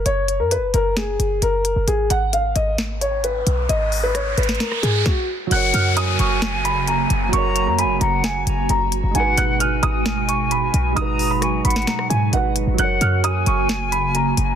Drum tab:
HH |x---x---x---x---x---x---x---x---|x---x---x---x---x---x---x---x---|x---o---x---xxxxx---x-----------|x---x---x---x---x---x---x---x---|
SD |----------------o---------------|----------------o---------------|--------r-----o-o-r-----o-------|----------------o---------------|
BD |--------------------------------|--------------------------------|------------------------o-------|--------------------------------|

HH |x---x---x---x---x---x---x---x---|x---x---x---x---x---x---x---x---|x---o---x---xxxxx---x---x---x---|x---x---x---x---x---x---x---x---|
SD |----------------o---------------|----------------o---------------|--------r-----o-o-r-------------|----------------o---------------|
BD |--------------------------------|--------------------------------|--------------------------------|--------------------------------|